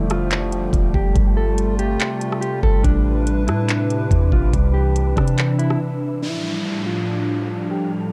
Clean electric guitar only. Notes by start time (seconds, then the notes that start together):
0.10 F4
0.95 G4
1.37 A4
1.79 G4
2.41 G4
2.63 A4
2.84 D4
3.47 E4
4.32 F4
4.74 G4
5.16 D4
5.59 E4
6.23 E4
6.86 F4
7.71 G4